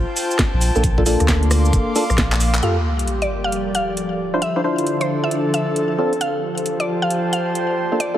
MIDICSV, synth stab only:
0, 0, Header, 1, 2, 480
1, 0, Start_track
1, 0, Tempo, 447761
1, 897, Time_signature, 4, 2, 24, 8
1, 8767, End_track
2, 0, Start_track
2, 0, Title_t, "Synth stab"
2, 0, Program_c, 0, 62
2, 809, Note_on_c, 0, 58, 81
2, 809, Note_on_c, 0, 62, 71
2, 809, Note_on_c, 0, 65, 69
2, 809, Note_on_c, 0, 69, 86
2, 894, Note_off_c, 0, 58, 0
2, 894, Note_off_c, 0, 62, 0
2, 894, Note_off_c, 0, 65, 0
2, 894, Note_off_c, 0, 69, 0
2, 1050, Note_on_c, 0, 58, 90
2, 1050, Note_on_c, 0, 62, 85
2, 1050, Note_on_c, 0, 65, 82
2, 1050, Note_on_c, 0, 69, 103
2, 1103, Note_off_c, 0, 58, 0
2, 1103, Note_off_c, 0, 62, 0
2, 1103, Note_off_c, 0, 65, 0
2, 1103, Note_off_c, 0, 69, 0
2, 1137, Note_on_c, 0, 58, 91
2, 1137, Note_on_c, 0, 62, 84
2, 1137, Note_on_c, 0, 65, 84
2, 1137, Note_on_c, 0, 69, 101
2, 2080, Note_off_c, 0, 58, 0
2, 2080, Note_off_c, 0, 62, 0
2, 2080, Note_off_c, 0, 65, 0
2, 2080, Note_off_c, 0, 69, 0
2, 2096, Note_on_c, 0, 58, 98
2, 2096, Note_on_c, 0, 62, 88
2, 2096, Note_on_c, 0, 65, 83
2, 2096, Note_on_c, 0, 69, 102
2, 2189, Note_off_c, 0, 58, 0
2, 2189, Note_off_c, 0, 62, 0
2, 2189, Note_off_c, 0, 65, 0
2, 2189, Note_off_c, 0, 69, 0
2, 2817, Note_on_c, 0, 58, 82
2, 2817, Note_on_c, 0, 65, 75
2, 2817, Note_on_c, 0, 67, 77
2, 2817, Note_on_c, 0, 69, 89
2, 2965, Note_off_c, 0, 58, 0
2, 2965, Note_off_c, 0, 65, 0
2, 2965, Note_off_c, 0, 67, 0
2, 2965, Note_off_c, 0, 69, 0
2, 4650, Note_on_c, 0, 62, 74
2, 4650, Note_on_c, 0, 64, 67
2, 4650, Note_on_c, 0, 65, 68
2, 4650, Note_on_c, 0, 72, 87
2, 4734, Note_off_c, 0, 62, 0
2, 4734, Note_off_c, 0, 64, 0
2, 4734, Note_off_c, 0, 65, 0
2, 4734, Note_off_c, 0, 72, 0
2, 4890, Note_on_c, 0, 62, 90
2, 4890, Note_on_c, 0, 64, 80
2, 4890, Note_on_c, 0, 65, 81
2, 4890, Note_on_c, 0, 72, 95
2, 4943, Note_off_c, 0, 62, 0
2, 4943, Note_off_c, 0, 64, 0
2, 4943, Note_off_c, 0, 65, 0
2, 4943, Note_off_c, 0, 72, 0
2, 4977, Note_on_c, 0, 62, 90
2, 4977, Note_on_c, 0, 64, 86
2, 4977, Note_on_c, 0, 65, 83
2, 4977, Note_on_c, 0, 72, 98
2, 6403, Note_off_c, 0, 62, 0
2, 6403, Note_off_c, 0, 65, 0
2, 6406, Note_off_c, 0, 64, 0
2, 6406, Note_off_c, 0, 72, 0
2, 6416, Note_on_c, 0, 60, 87
2, 6416, Note_on_c, 0, 62, 81
2, 6416, Note_on_c, 0, 65, 77
2, 6416, Note_on_c, 0, 69, 92
2, 6565, Note_off_c, 0, 60, 0
2, 6565, Note_off_c, 0, 62, 0
2, 6565, Note_off_c, 0, 65, 0
2, 6565, Note_off_c, 0, 69, 0
2, 8490, Note_on_c, 0, 58, 77
2, 8490, Note_on_c, 0, 62, 67
2, 8490, Note_on_c, 0, 65, 68
2, 8490, Note_on_c, 0, 69, 85
2, 8574, Note_off_c, 0, 58, 0
2, 8574, Note_off_c, 0, 62, 0
2, 8574, Note_off_c, 0, 65, 0
2, 8574, Note_off_c, 0, 69, 0
2, 8730, Note_on_c, 0, 58, 82
2, 8730, Note_on_c, 0, 62, 77
2, 8730, Note_on_c, 0, 65, 83
2, 8730, Note_on_c, 0, 69, 99
2, 8767, Note_off_c, 0, 58, 0
2, 8767, Note_off_c, 0, 62, 0
2, 8767, Note_off_c, 0, 65, 0
2, 8767, Note_off_c, 0, 69, 0
2, 8767, End_track
0, 0, End_of_file